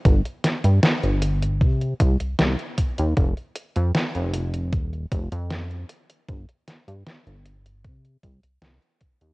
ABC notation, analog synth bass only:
X:1
M:4/4
L:1/16
Q:1/4=77
K:Gphr
V:1 name="Analog synth bass" clef=bass
G,,, z2 G,, z G,,,3 C,2 C,, C,, C,, z2 E,, | F,,, z2 F,, z F,,,3 E,,,2 F,,, F,,3 z2 | G,,, z2 G,, z G,,,3 C,2 C,, C,, C,, z2 E,, |]